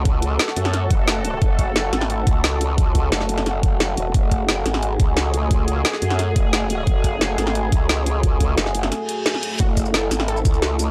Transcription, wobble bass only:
X:1
M:4/4
L:1/8
Q:1/4=176
K:F#m
V:1 name="Wobble bass" clef=bass
C,,2 z F,,2 F,,,3 | F,,,3 G,,,2 C,,3- | C,,2 F,,,4- F,,, E,,, | F,,,3 G,,,2 C,,3- |
C,,2 z F,,2 F,,,3 | F,,,3 G,,,2 C,,3- | C,,2 F,,,2 z4 | F,,,3 G,,,2 C,,3 |]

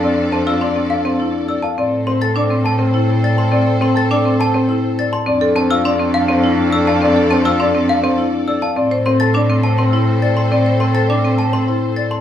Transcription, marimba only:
X:1
M:3/4
L:1/16
Q:1/4=103
K:Aphr
V:1 name="Marimba"
C z C F D C z C E z3 | C z C A D C z C E z3 | C z C A D C z C E z3 | C A C F D C z C E z3 |
C A C F D C z C E z3 | C c C A D C z C E z3 | C c C A D C z C E z3 |]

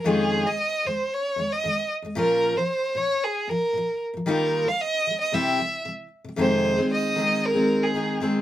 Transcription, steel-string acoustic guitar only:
X:1
M:4/4
L:1/16
Q:1/4=114
K:Fm
V:1 name="Steel-string acoustic guitar" clef=bass
[F,,E,A,DEF]3 [F,,E,A,]2 z [F,,E,A,]2 z2 [F,,E,A,]2 [F,,E,A,]2 z [F,,E,A,] | [B,,F,DFB]3 [B,,F,]2 z [B,,F,]2 z2 [B,,F,]2 [B,,F,]2 z [B,,F,] | [E,G,B,EF]3 [E,G,]2 z [E,G,]2 [C,G,C=EG]2 [C,G,]2 [C,G,]2 z [C,G,] | [F,,C,E,A,CA]3 [E,A,CA]3 [E,A,CA]3 [E,A,CA]3 [E,A,CA]2 [E,A,CA]2 |]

